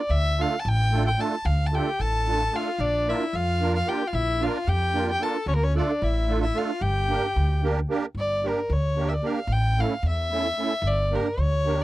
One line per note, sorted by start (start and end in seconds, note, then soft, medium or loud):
0.00 0.12 D5 medium
0.09 0.43 D2 loud
0.09 0.42 E5 loud
0.38 0.55 A3 medium
0.38 0.55 D4 medium
0.38 0.56 F4 medium
0.38 0.56 A4 medium
0.38 0.61 F5 loud
0.59 0.69 A5 medium
0.65 1.13 A1 loud
0.65 1.06 G5 loud
0.91 1.08 A3 medium
0.91 1.09 D4 medium
0.91 1.09 F4 medium
0.91 1.09 A4 medium
1.07 1.22 G5 loud
1.17 1.34 A3 medium
1.17 1.35 D4 medium
1.17 1.35 F4 medium
1.17 1.35 A4 medium
1.17 1.47 A5 loud
1.45 1.78 D2 loud
1.45 1.68 F5 loud
1.66 1.76 A5 medium
1.71 1.89 A3 medium
1.71 1.89 D4 medium
1.71 1.90 F4 medium
1.71 2.02 G4 medium
1.71 1.90 A4 medium
1.71 2.02 G5 medium
1.99 2.47 A1 medium
1.99 2.56 A4 medium
1.99 2.57 A5 loud
2.27 2.43 A3 medium
2.27 2.44 D4 medium
2.27 2.44 F4 medium
2.27 2.44 A4 medium
2.52 2.69 A3 medium
2.52 2.69 D4 medium
2.52 2.69 F4 medium
2.52 2.81 F4 medium
2.52 2.70 A4 medium
2.52 2.82 F5 medium
2.79 3.12 A#1 loud
2.79 3.10 D4 medium
2.79 3.11 D5 loud
3.07 3.24 A#3 medium
3.07 3.24 D4 medium
3.07 3.36 E4 medium
3.07 3.24 F4 medium
3.07 3.25 A#4 medium
3.07 3.37 E5 medium
3.33 3.81 F2 loud
3.33 3.74 F4 medium
3.33 3.75 F5 loud
3.60 3.77 A#3 medium
3.60 3.78 D4 medium
3.60 3.78 F4 medium
3.60 3.78 A#4 medium
3.75 3.89 F4 medium
3.75 3.90 F5 loud
3.86 4.03 A#3 medium
3.86 4.03 D4 medium
3.86 4.03 F4 medium
3.86 4.09 G4 medium
3.86 4.03 A#4 medium
3.86 4.09 G5 medium
4.07 4.15 F4 medium
4.07 4.16 F5 medium
4.13 4.46 A#1 loud
4.13 4.43 E4 loud
4.13 4.44 E5 loud
4.40 4.57 A#3 medium
4.40 4.58 D4 medium
4.40 4.58 F4 medium
4.40 4.70 F4 medium
4.40 4.59 A#4 medium
4.40 4.70 F5 medium
4.67 5.15 F2 loud
4.67 5.08 G4 medium
4.67 5.09 G5 loud
4.93 5.10 A#3 medium
4.93 5.11 D4 medium
4.93 5.11 F4 medium
4.93 5.11 A#4 medium
5.09 5.22 G4 medium
5.09 5.24 G5 loud
5.20 5.37 A#3 medium
5.20 5.37 D4 medium
5.20 5.37 F4 medium
5.20 5.47 A4 loud
5.20 5.38 A#4 medium
5.20 5.47 A5 medium
5.46 5.79 D2 loud
5.46 5.55 C#4 medium
5.46 5.57 C#5 loud
5.54 5.64 A#3 medium
5.54 5.65 A#4 medium
5.63 5.76 C#4 medium
5.63 5.77 C#5 loud
5.74 5.91 A3 medium
5.74 5.92 D4 medium
5.74 6.04 D4 medium
5.74 5.92 F4 medium
5.74 5.92 A4 medium
5.74 6.05 D5 medium
6.02 6.49 A1 loud
6.02 6.43 E4 medium
6.02 6.42 E5 medium
6.27 6.45 A3 medium
6.27 6.45 D4 medium
6.27 6.45 F4 medium
6.27 6.46 A4 medium
6.43 6.57 E4 medium
6.43 6.59 E5 medium
6.54 6.71 A3 medium
6.54 6.71 D4 medium
6.54 6.71 F4 medium
6.54 6.83 F4 medium
6.54 6.71 A4 medium
6.58 6.83 F5 medium
6.81 7.14 G1 loud
6.81 7.64 G4 medium
6.81 7.64 G5 medium
7.08 7.25 A#3 medium
7.08 7.26 D4 medium
7.08 7.26 G4 medium
7.08 7.27 A#4 medium
7.36 7.83 D2 loud
7.63 7.79 A#3 medium
7.63 7.80 D4 medium
7.63 7.80 G4 medium
7.63 7.80 A#4 medium
7.89 8.05 A#3 medium
7.89 8.05 D4 medium
7.89 8.06 G4 medium
7.89 8.06 A#4 loud
8.15 8.48 G1 medium
8.15 8.49 D5 medium
8.43 8.60 A#3 medium
8.43 8.60 D4 medium
8.43 8.60 G4 medium
8.43 8.61 A#4 medium
8.48 8.74 A#4 medium
8.70 9.17 D2 loud
8.70 9.10 C#5 medium
8.96 9.13 A#3 medium
8.96 9.13 D4 medium
8.96 9.14 G4 medium
8.96 9.14 A#4 medium
9.09 9.16 E5 medium
9.14 9.28 D5 medium
9.22 9.39 A#3 medium
9.22 9.39 D4 medium
9.22 9.40 G4 medium
9.22 9.40 A#4 medium
9.27 9.54 F5 medium
9.47 9.81 A1 loud
9.52 9.82 G5 loud
9.77 9.94 A3 medium
9.77 9.94 C#4 medium
9.77 9.94 E4 medium
9.77 9.95 A4 medium
9.77 10.05 F5 medium
10.03 10.50 E2 loud
10.08 10.88 E5 loud
10.31 10.47 A3 medium
10.31 10.47 C#4 medium
10.31 10.48 E4 medium
10.31 10.48 A4 medium
10.57 10.73 A3 medium
10.57 10.73 C#4 medium
10.57 10.74 E4 medium
10.57 10.74 A4 medium
10.82 11.15 G1 loud
10.87 11.17 D5 loud
11.11 11.28 A#3 medium
11.11 11.28 D4 medium
11.11 11.28 G4 medium
11.11 11.28 A#4 medium
11.15 11.42 A#4 medium
11.38 11.84 D2 loud
11.38 11.83 C#5 loud
11.65 11.81 A#3 medium
11.65 11.82 D4 medium
11.65 11.82 G4 medium
11.65 11.82 A#4 medium